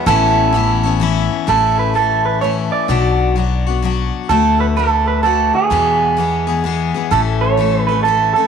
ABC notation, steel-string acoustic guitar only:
X:1
M:3/4
L:1/8
Q:"Swing" 1/4=128
K:A
V:1 name="Steel-string acoustic guitar"
[A,,E,B,CE]2 [E,B,CE] [B,CE] [E,B,CE]2 | [A,,E,A,CE]2 [E,A,CE]2 [E,A,CE]2 | [B,,F,B,DF]2 [F,B,DF] [B,DF] [F,B,DF]2 | [D,A,DF]2 [D,A,DF]2 [D,A,DF]2 |
[E,,B,,E,G,B,G]2 [E,G,B,G] [E,G,B,G] [E,G,B,G] [E,G,B,G] | [A,,E,A,CA]2 [E,A,CA] [A,CA] [E,A,CA] [A,CA] |]